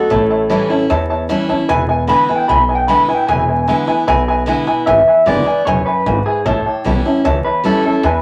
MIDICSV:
0, 0, Header, 1, 6, 480
1, 0, Start_track
1, 0, Tempo, 396563
1, 131, Time_signature, 4, 2, 24, 8
1, 9948, End_track
2, 0, Start_track
2, 0, Title_t, "Upright piano"
2, 0, Program_c, 0, 0
2, 127, Note_on_c, 0, 76, 89
2, 128, Note_on_c, 0, 73, 105
2, 134, Note_on_c, 0, 81, 117
2, 273, Note_off_c, 0, 73, 0
2, 273, Note_off_c, 0, 76, 0
2, 276, Note_off_c, 0, 81, 0
2, 360, Note_on_c, 0, 73, 91
2, 365, Note_on_c, 0, 76, 92
2, 371, Note_on_c, 0, 81, 99
2, 510, Note_off_c, 0, 73, 0
2, 512, Note_off_c, 0, 76, 0
2, 515, Note_off_c, 0, 81, 0
2, 601, Note_on_c, 0, 73, 94
2, 607, Note_on_c, 0, 76, 90
2, 609, Note_on_c, 0, 81, 103
2, 750, Note_off_c, 0, 73, 0
2, 753, Note_off_c, 0, 76, 0
2, 754, Note_off_c, 0, 81, 0
2, 842, Note_on_c, 0, 73, 92
2, 847, Note_on_c, 0, 76, 86
2, 851, Note_on_c, 0, 81, 103
2, 991, Note_off_c, 0, 73, 0
2, 993, Note_off_c, 0, 76, 0
2, 995, Note_off_c, 0, 81, 0
2, 1084, Note_on_c, 0, 73, 109
2, 1088, Note_on_c, 0, 76, 107
2, 1092, Note_on_c, 0, 81, 127
2, 1232, Note_off_c, 0, 73, 0
2, 1234, Note_off_c, 0, 76, 0
2, 1236, Note_off_c, 0, 81, 0
2, 1328, Note_on_c, 0, 73, 93
2, 1332, Note_on_c, 0, 76, 87
2, 1333, Note_on_c, 0, 81, 103
2, 1474, Note_off_c, 0, 73, 0
2, 1476, Note_off_c, 0, 76, 0
2, 1476, Note_off_c, 0, 81, 0
2, 1564, Note_on_c, 0, 73, 86
2, 1569, Note_on_c, 0, 76, 78
2, 1570, Note_on_c, 0, 81, 91
2, 1712, Note_off_c, 0, 73, 0
2, 1715, Note_off_c, 0, 76, 0
2, 1715, Note_off_c, 0, 81, 0
2, 1802, Note_on_c, 0, 76, 81
2, 1803, Note_on_c, 0, 73, 96
2, 1811, Note_on_c, 0, 81, 107
2, 1951, Note_off_c, 0, 73, 0
2, 1951, Note_off_c, 0, 76, 0
2, 1955, Note_off_c, 0, 81, 0
2, 2040, Note_on_c, 0, 71, 122
2, 2043, Note_on_c, 0, 76, 108
2, 2045, Note_on_c, 0, 80, 127
2, 2190, Note_off_c, 0, 71, 0
2, 2191, Note_off_c, 0, 76, 0
2, 2193, Note_off_c, 0, 80, 0
2, 2279, Note_on_c, 0, 71, 89
2, 2280, Note_on_c, 0, 76, 78
2, 2286, Note_on_c, 0, 80, 98
2, 2430, Note_off_c, 0, 71, 0
2, 2430, Note_off_c, 0, 76, 0
2, 2433, Note_off_c, 0, 80, 0
2, 2523, Note_on_c, 0, 71, 80
2, 2525, Note_on_c, 0, 76, 75
2, 2529, Note_on_c, 0, 80, 82
2, 2672, Note_off_c, 0, 71, 0
2, 2672, Note_off_c, 0, 76, 0
2, 2675, Note_off_c, 0, 80, 0
2, 2769, Note_on_c, 0, 71, 74
2, 2772, Note_on_c, 0, 76, 73
2, 2776, Note_on_c, 0, 80, 91
2, 2915, Note_off_c, 0, 71, 0
2, 2916, Note_off_c, 0, 76, 0
2, 2918, Note_off_c, 0, 80, 0
2, 3004, Note_on_c, 0, 71, 86
2, 3011, Note_on_c, 0, 76, 86
2, 3014, Note_on_c, 0, 80, 100
2, 3152, Note_off_c, 0, 71, 0
2, 3156, Note_off_c, 0, 76, 0
2, 3157, Note_off_c, 0, 80, 0
2, 3245, Note_on_c, 0, 71, 75
2, 3249, Note_on_c, 0, 76, 72
2, 3256, Note_on_c, 0, 80, 86
2, 3393, Note_off_c, 0, 71, 0
2, 3395, Note_off_c, 0, 76, 0
2, 3398, Note_off_c, 0, 80, 0
2, 3484, Note_on_c, 0, 71, 68
2, 3489, Note_on_c, 0, 76, 67
2, 3490, Note_on_c, 0, 80, 77
2, 3632, Note_off_c, 0, 71, 0
2, 3635, Note_off_c, 0, 76, 0
2, 3635, Note_off_c, 0, 80, 0
2, 3725, Note_on_c, 0, 71, 81
2, 3729, Note_on_c, 0, 76, 72
2, 3733, Note_on_c, 0, 80, 94
2, 3873, Note_off_c, 0, 71, 0
2, 3875, Note_off_c, 0, 76, 0
2, 3877, Note_off_c, 0, 80, 0
2, 3976, Note_on_c, 0, 71, 109
2, 3981, Note_on_c, 0, 80, 115
2, 3982, Note_on_c, 0, 76, 99
2, 4119, Note_off_c, 0, 71, 0
2, 4121, Note_off_c, 0, 76, 0
2, 4121, Note_off_c, 0, 80, 0
2, 4210, Note_on_c, 0, 71, 73
2, 4212, Note_on_c, 0, 76, 73
2, 4217, Note_on_c, 0, 80, 81
2, 4356, Note_off_c, 0, 71, 0
2, 4356, Note_off_c, 0, 76, 0
2, 4359, Note_off_c, 0, 80, 0
2, 4446, Note_on_c, 0, 71, 75
2, 4451, Note_on_c, 0, 76, 81
2, 4456, Note_on_c, 0, 80, 92
2, 4593, Note_off_c, 0, 71, 0
2, 4596, Note_off_c, 0, 76, 0
2, 4599, Note_off_c, 0, 80, 0
2, 4689, Note_on_c, 0, 71, 93
2, 4690, Note_on_c, 0, 76, 83
2, 4694, Note_on_c, 0, 80, 104
2, 4835, Note_off_c, 0, 71, 0
2, 4836, Note_off_c, 0, 76, 0
2, 4838, Note_off_c, 0, 80, 0
2, 4929, Note_on_c, 0, 71, 124
2, 4930, Note_on_c, 0, 76, 117
2, 4937, Note_on_c, 0, 80, 127
2, 5075, Note_off_c, 0, 71, 0
2, 5076, Note_off_c, 0, 76, 0
2, 5079, Note_off_c, 0, 80, 0
2, 5175, Note_on_c, 0, 71, 92
2, 5181, Note_on_c, 0, 76, 86
2, 5184, Note_on_c, 0, 80, 106
2, 5318, Note_off_c, 0, 71, 0
2, 5321, Note_off_c, 0, 76, 0
2, 5323, Note_off_c, 0, 80, 0
2, 5411, Note_on_c, 0, 71, 77
2, 5414, Note_on_c, 0, 76, 74
2, 5422, Note_on_c, 0, 80, 100
2, 5556, Note_off_c, 0, 71, 0
2, 5557, Note_off_c, 0, 76, 0
2, 5561, Note_off_c, 0, 80, 0
2, 5648, Note_on_c, 0, 71, 92
2, 5652, Note_on_c, 0, 76, 79
2, 5658, Note_on_c, 0, 80, 105
2, 5795, Note_off_c, 0, 71, 0
2, 5796, Note_off_c, 0, 76, 0
2, 5799, Note_off_c, 0, 80, 0
2, 5885, Note_on_c, 0, 71, 90
2, 5889, Note_on_c, 0, 76, 88
2, 5893, Note_on_c, 0, 80, 109
2, 6033, Note_off_c, 0, 71, 0
2, 6035, Note_off_c, 0, 76, 0
2, 6037, Note_off_c, 0, 80, 0
2, 6135, Note_on_c, 0, 71, 82
2, 6140, Note_on_c, 0, 76, 67
2, 6146, Note_on_c, 0, 80, 87
2, 6278, Note_off_c, 0, 71, 0
2, 6281, Note_off_c, 0, 76, 0
2, 6283, Note_off_c, 0, 80, 0
2, 6365, Note_on_c, 0, 71, 75
2, 6368, Note_on_c, 0, 76, 63
2, 6374, Note_on_c, 0, 80, 82
2, 6513, Note_off_c, 0, 71, 0
2, 6514, Note_off_c, 0, 76, 0
2, 6517, Note_off_c, 0, 80, 0
2, 6600, Note_on_c, 0, 71, 73
2, 6606, Note_on_c, 0, 76, 68
2, 6611, Note_on_c, 0, 80, 86
2, 6751, Note_off_c, 0, 71, 0
2, 6754, Note_off_c, 0, 76, 0
2, 6756, Note_off_c, 0, 80, 0
2, 6853, Note_on_c, 0, 71, 90
2, 6857, Note_on_c, 0, 76, 94
2, 6858, Note_on_c, 0, 80, 106
2, 6997, Note_off_c, 0, 71, 0
2, 6999, Note_off_c, 0, 76, 0
2, 7000, Note_off_c, 0, 80, 0
2, 7095, Note_on_c, 0, 71, 67
2, 7098, Note_on_c, 0, 76, 62
2, 7099, Note_on_c, 0, 80, 85
2, 7238, Note_off_c, 0, 71, 0
2, 7240, Note_off_c, 0, 76, 0
2, 7240, Note_off_c, 0, 80, 0
2, 7330, Note_on_c, 0, 71, 79
2, 7334, Note_on_c, 0, 76, 62
2, 7339, Note_on_c, 0, 80, 77
2, 7476, Note_off_c, 0, 71, 0
2, 7478, Note_off_c, 0, 76, 0
2, 7480, Note_off_c, 0, 80, 0
2, 7569, Note_on_c, 0, 71, 73
2, 7574, Note_on_c, 0, 76, 68
2, 7577, Note_on_c, 0, 80, 90
2, 7715, Note_off_c, 0, 71, 0
2, 7718, Note_off_c, 0, 76, 0
2, 7719, Note_off_c, 0, 80, 0
2, 7810, Note_on_c, 0, 73, 95
2, 7816, Note_on_c, 0, 76, 88
2, 7818, Note_on_c, 0, 81, 117
2, 7956, Note_off_c, 0, 73, 0
2, 7959, Note_off_c, 0, 76, 0
2, 7960, Note_off_c, 0, 81, 0
2, 8058, Note_on_c, 0, 73, 76
2, 8064, Note_on_c, 0, 76, 69
2, 8065, Note_on_c, 0, 81, 79
2, 8199, Note_off_c, 0, 73, 0
2, 8203, Note_off_c, 0, 76, 0
2, 8203, Note_off_c, 0, 81, 0
2, 8295, Note_on_c, 0, 73, 76
2, 8300, Note_on_c, 0, 76, 72
2, 8300, Note_on_c, 0, 81, 90
2, 8438, Note_off_c, 0, 73, 0
2, 8441, Note_off_c, 0, 76, 0
2, 8441, Note_off_c, 0, 81, 0
2, 8536, Note_on_c, 0, 73, 73
2, 8546, Note_on_c, 0, 76, 77
2, 8546, Note_on_c, 0, 81, 88
2, 8679, Note_off_c, 0, 73, 0
2, 8683, Note_off_c, 0, 81, 0
2, 8684, Note_off_c, 0, 76, 0
2, 8767, Note_on_c, 0, 73, 110
2, 8772, Note_on_c, 0, 76, 99
2, 8776, Note_on_c, 0, 81, 127
2, 8914, Note_off_c, 0, 73, 0
2, 8917, Note_off_c, 0, 76, 0
2, 8919, Note_off_c, 0, 81, 0
2, 9018, Note_on_c, 0, 73, 74
2, 9020, Note_on_c, 0, 76, 62
2, 9025, Note_on_c, 0, 81, 84
2, 9159, Note_off_c, 0, 73, 0
2, 9161, Note_off_c, 0, 76, 0
2, 9163, Note_off_c, 0, 81, 0
2, 9254, Note_on_c, 0, 73, 65
2, 9256, Note_on_c, 0, 76, 68
2, 9261, Note_on_c, 0, 81, 76
2, 9398, Note_off_c, 0, 73, 0
2, 9399, Note_off_c, 0, 76, 0
2, 9401, Note_off_c, 0, 81, 0
2, 9499, Note_on_c, 0, 73, 72
2, 9502, Note_on_c, 0, 76, 69
2, 9508, Note_on_c, 0, 81, 78
2, 9640, Note_off_c, 0, 73, 0
2, 9642, Note_off_c, 0, 76, 0
2, 9644, Note_off_c, 0, 81, 0
2, 9724, Note_on_c, 0, 71, 97
2, 9731, Note_on_c, 0, 76, 102
2, 9738, Note_on_c, 0, 80, 105
2, 9872, Note_off_c, 0, 71, 0
2, 9876, Note_off_c, 0, 76, 0
2, 9879, Note_off_c, 0, 80, 0
2, 9948, End_track
3, 0, Start_track
3, 0, Title_t, "Clean electric guitar"
3, 0, Program_c, 1, 27
3, 0, Note_on_c, 1, 69, 111
3, 1040, Note_off_c, 1, 69, 0
3, 2527, Note_on_c, 1, 83, 113
3, 2685, Note_off_c, 1, 83, 0
3, 2853, Note_on_c, 1, 79, 99
3, 2998, Note_off_c, 1, 79, 0
3, 3003, Note_on_c, 1, 83, 104
3, 3163, Note_off_c, 1, 83, 0
3, 3330, Note_on_c, 1, 79, 102
3, 3483, Note_off_c, 1, 79, 0
3, 3488, Note_on_c, 1, 83, 108
3, 3645, Note_off_c, 1, 83, 0
3, 3809, Note_on_c, 1, 79, 92
3, 3956, Note_off_c, 1, 79, 0
3, 3961, Note_on_c, 1, 80, 106
3, 4898, Note_off_c, 1, 80, 0
3, 5885, Note_on_c, 1, 76, 104
3, 6373, Note_off_c, 1, 76, 0
3, 6377, Note_on_c, 1, 74, 108
3, 6822, Note_off_c, 1, 74, 0
3, 6843, Note_on_c, 1, 73, 106
3, 7085, Note_off_c, 1, 73, 0
3, 7090, Note_on_c, 1, 71, 100
3, 7574, Note_on_c, 1, 68, 96
3, 7586, Note_off_c, 1, 71, 0
3, 7814, Note_off_c, 1, 68, 0
3, 7814, Note_on_c, 1, 69, 101
3, 8058, Note_off_c, 1, 69, 0
3, 8058, Note_on_c, 1, 67, 94
3, 8776, Note_off_c, 1, 67, 0
3, 9011, Note_on_c, 1, 71, 105
3, 9235, Note_off_c, 1, 71, 0
3, 9266, Note_on_c, 1, 69, 99
3, 9502, Note_off_c, 1, 69, 0
3, 9516, Note_on_c, 1, 69, 95
3, 9747, Note_off_c, 1, 69, 0
3, 9747, Note_on_c, 1, 71, 102
3, 9948, Note_off_c, 1, 71, 0
3, 9948, End_track
4, 0, Start_track
4, 0, Title_t, "Steel-string acoustic guitar"
4, 0, Program_c, 2, 25
4, 0, Note_on_c, 2, 59, 49
4, 122, Note_on_c, 2, 45, 96
4, 126, Note_off_c, 2, 59, 0
4, 600, Note_on_c, 2, 52, 89
4, 608, Note_on_c, 2, 55, 85
4, 621, Note_on_c, 2, 61, 100
4, 626, Note_on_c, 2, 64, 91
4, 831, Note_off_c, 2, 64, 0
4, 836, Note_off_c, 2, 52, 0
4, 840, Note_off_c, 2, 55, 0
4, 845, Note_on_c, 2, 64, 70
4, 846, Note_off_c, 2, 61, 0
4, 868, Note_on_c, 2, 61, 55
4, 1039, Note_off_c, 2, 45, 0
4, 1079, Note_off_c, 2, 64, 0
4, 1089, Note_on_c, 2, 40, 94
4, 1090, Note_off_c, 2, 61, 0
4, 1561, Note_on_c, 2, 52, 89
4, 1569, Note_on_c, 2, 55, 101
4, 1580, Note_on_c, 2, 61, 102
4, 1583, Note_on_c, 2, 64, 102
4, 1786, Note_off_c, 2, 64, 0
4, 1797, Note_off_c, 2, 52, 0
4, 1801, Note_off_c, 2, 55, 0
4, 1801, Note_on_c, 2, 64, 65
4, 1806, Note_off_c, 2, 61, 0
4, 1827, Note_on_c, 2, 61, 47
4, 2003, Note_off_c, 2, 40, 0
4, 2037, Note_off_c, 2, 64, 0
4, 2047, Note_on_c, 2, 40, 105
4, 2050, Note_off_c, 2, 61, 0
4, 2511, Note_on_c, 2, 50, 86
4, 2527, Note_on_c, 2, 56, 84
4, 2533, Note_on_c, 2, 59, 105
4, 2537, Note_on_c, 2, 64, 105
4, 2751, Note_off_c, 2, 64, 0
4, 2752, Note_off_c, 2, 50, 0
4, 2760, Note_off_c, 2, 56, 0
4, 2763, Note_off_c, 2, 59, 0
4, 2766, Note_on_c, 2, 64, 65
4, 2789, Note_on_c, 2, 59, 58
4, 2962, Note_off_c, 2, 40, 0
4, 3000, Note_off_c, 2, 64, 0
4, 3011, Note_off_c, 2, 59, 0
4, 3017, Note_on_c, 2, 47, 91
4, 3488, Note_on_c, 2, 50, 84
4, 3499, Note_on_c, 2, 56, 94
4, 3504, Note_on_c, 2, 59, 92
4, 3511, Note_on_c, 2, 64, 93
4, 3720, Note_off_c, 2, 50, 0
4, 3721, Note_off_c, 2, 64, 0
4, 3726, Note_off_c, 2, 56, 0
4, 3729, Note_off_c, 2, 59, 0
4, 3735, Note_on_c, 2, 64, 63
4, 3759, Note_on_c, 2, 59, 53
4, 3927, Note_off_c, 2, 47, 0
4, 3964, Note_off_c, 2, 64, 0
4, 3975, Note_on_c, 2, 40, 106
4, 3976, Note_off_c, 2, 59, 0
4, 4450, Note_on_c, 2, 50, 83
4, 4463, Note_on_c, 2, 56, 93
4, 4467, Note_on_c, 2, 59, 86
4, 4476, Note_on_c, 2, 64, 96
4, 4672, Note_off_c, 2, 64, 0
4, 4682, Note_off_c, 2, 50, 0
4, 4686, Note_on_c, 2, 64, 69
4, 4688, Note_off_c, 2, 56, 0
4, 4691, Note_off_c, 2, 59, 0
4, 4713, Note_on_c, 2, 59, 58
4, 4886, Note_off_c, 2, 40, 0
4, 4920, Note_off_c, 2, 64, 0
4, 4933, Note_off_c, 2, 59, 0
4, 4936, Note_on_c, 2, 47, 93
4, 5399, Note_on_c, 2, 50, 89
4, 5413, Note_on_c, 2, 56, 84
4, 5418, Note_on_c, 2, 59, 94
4, 5429, Note_on_c, 2, 64, 97
4, 5636, Note_off_c, 2, 64, 0
4, 5637, Note_off_c, 2, 50, 0
4, 5643, Note_off_c, 2, 56, 0
4, 5646, Note_off_c, 2, 59, 0
4, 5651, Note_on_c, 2, 64, 65
4, 5674, Note_on_c, 2, 59, 46
4, 5847, Note_off_c, 2, 47, 0
4, 5882, Note_off_c, 2, 64, 0
4, 5894, Note_off_c, 2, 59, 0
4, 5894, Note_on_c, 2, 40, 100
4, 6363, Note_on_c, 2, 50, 75
4, 6367, Note_on_c, 2, 56, 78
4, 6377, Note_on_c, 2, 59, 82
4, 6386, Note_on_c, 2, 64, 99
4, 6595, Note_off_c, 2, 64, 0
4, 6599, Note_off_c, 2, 50, 0
4, 6600, Note_off_c, 2, 56, 0
4, 6606, Note_off_c, 2, 59, 0
4, 6609, Note_on_c, 2, 64, 58
4, 6635, Note_on_c, 2, 59, 48
4, 6806, Note_off_c, 2, 40, 0
4, 6842, Note_off_c, 2, 64, 0
4, 6854, Note_off_c, 2, 59, 0
4, 6861, Note_on_c, 2, 42, 98
4, 7313, Note_off_c, 2, 42, 0
4, 7339, Note_on_c, 2, 44, 85
4, 7792, Note_off_c, 2, 44, 0
4, 7815, Note_on_c, 2, 45, 99
4, 8285, Note_on_c, 2, 52, 85
4, 8296, Note_on_c, 2, 55, 71
4, 8304, Note_on_c, 2, 61, 86
4, 8312, Note_on_c, 2, 64, 84
4, 8520, Note_off_c, 2, 52, 0
4, 8523, Note_off_c, 2, 64, 0
4, 8525, Note_off_c, 2, 55, 0
4, 8529, Note_off_c, 2, 61, 0
4, 8537, Note_on_c, 2, 64, 66
4, 8565, Note_on_c, 2, 61, 55
4, 8726, Note_off_c, 2, 45, 0
4, 8766, Note_off_c, 2, 64, 0
4, 8774, Note_on_c, 2, 40, 102
4, 8780, Note_off_c, 2, 61, 0
4, 9242, Note_on_c, 2, 52, 83
4, 9251, Note_on_c, 2, 55, 91
4, 9264, Note_on_c, 2, 61, 91
4, 9271, Note_on_c, 2, 64, 101
4, 9456, Note_off_c, 2, 64, 0
4, 9471, Note_on_c, 2, 64, 60
4, 9478, Note_off_c, 2, 52, 0
4, 9483, Note_off_c, 2, 55, 0
4, 9486, Note_off_c, 2, 61, 0
4, 9501, Note_on_c, 2, 61, 52
4, 9685, Note_off_c, 2, 40, 0
4, 9712, Note_off_c, 2, 64, 0
4, 9723, Note_on_c, 2, 40, 93
4, 9727, Note_off_c, 2, 61, 0
4, 9948, Note_off_c, 2, 40, 0
4, 9948, End_track
5, 0, Start_track
5, 0, Title_t, "Upright bass"
5, 0, Program_c, 3, 32
5, 130, Note_on_c, 3, 33, 105
5, 634, Note_off_c, 3, 33, 0
5, 1094, Note_on_c, 3, 40, 99
5, 1597, Note_off_c, 3, 40, 0
5, 2052, Note_on_c, 3, 28, 88
5, 2556, Note_off_c, 3, 28, 0
5, 3016, Note_on_c, 3, 35, 93
5, 3519, Note_off_c, 3, 35, 0
5, 3975, Note_on_c, 3, 28, 90
5, 4478, Note_off_c, 3, 28, 0
5, 4935, Note_on_c, 3, 35, 99
5, 5438, Note_off_c, 3, 35, 0
5, 5895, Note_on_c, 3, 32, 90
5, 6127, Note_off_c, 3, 32, 0
5, 6369, Note_on_c, 3, 30, 103
5, 6604, Note_off_c, 3, 30, 0
5, 6860, Note_on_c, 3, 28, 87
5, 7090, Note_off_c, 3, 28, 0
5, 7335, Note_on_c, 3, 32, 91
5, 7560, Note_off_c, 3, 32, 0
5, 7812, Note_on_c, 3, 33, 88
5, 8045, Note_off_c, 3, 33, 0
5, 8297, Note_on_c, 3, 35, 98
5, 8528, Note_off_c, 3, 35, 0
5, 8778, Note_on_c, 3, 37, 81
5, 9008, Note_off_c, 3, 37, 0
5, 9261, Note_on_c, 3, 39, 91
5, 9480, Note_off_c, 3, 39, 0
5, 9729, Note_on_c, 3, 40, 82
5, 9948, Note_off_c, 3, 40, 0
5, 9948, End_track
6, 0, Start_track
6, 0, Title_t, "Muted upright bass strokes"
6, 852, Note_on_c, 9, 29, 76
6, 973, Note_off_c, 9, 29, 0
6, 1817, Note_on_c, 9, 29, 65
6, 1938, Note_off_c, 9, 29, 0
6, 2777, Note_on_c, 9, 29, 80
6, 2898, Note_off_c, 9, 29, 0
6, 3735, Note_on_c, 9, 29, 74
6, 3856, Note_off_c, 9, 29, 0
6, 4695, Note_on_c, 9, 29, 79
6, 4816, Note_off_c, 9, 29, 0
6, 5657, Note_on_c, 9, 29, 78
6, 5778, Note_off_c, 9, 29, 0
6, 6133, Note_on_c, 9, 29, 75
6, 6254, Note_off_c, 9, 29, 0
6, 6616, Note_on_c, 9, 29, 83
6, 6737, Note_off_c, 9, 29, 0
6, 7098, Note_on_c, 9, 29, 74
6, 7219, Note_off_c, 9, 29, 0
6, 7568, Note_on_c, 9, 29, 71
6, 7689, Note_off_c, 9, 29, 0
6, 8055, Note_on_c, 9, 29, 80
6, 8176, Note_off_c, 9, 29, 0
6, 8540, Note_on_c, 9, 29, 75
6, 8661, Note_off_c, 9, 29, 0
6, 9025, Note_on_c, 9, 29, 70
6, 9146, Note_off_c, 9, 29, 0
6, 9498, Note_on_c, 9, 29, 39
6, 9619, Note_off_c, 9, 29, 0
6, 9948, End_track
0, 0, End_of_file